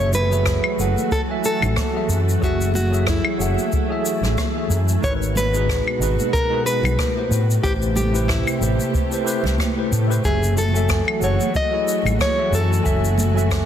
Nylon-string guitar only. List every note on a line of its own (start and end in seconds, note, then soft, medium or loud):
0.00 0.12 C#5 loud
0.15 1.12 B4 loud
1.12 1.21 A4 medium
1.46 2.46 A4 medium
2.44 2.74 F#4 medium
2.75 3.08 F#4 medium
3.10 4.67 E4 medium
5.04 5.13 C#5 loud
5.37 6.33 B4 loud
6.33 6.66 A#4 loud
6.66 7.60 B4 loud
7.63 7.72 G4 medium
7.96 8.30 G4 medium
8.28 9.88 E4 medium
10.25 10.55 G#4 medium
10.58 11.24 A4 medium
11.24 11.56 C#5 medium
11.56 12.21 D#5 loud
12.21 12.54 C#5 loud
12.55 13.65 A4 medium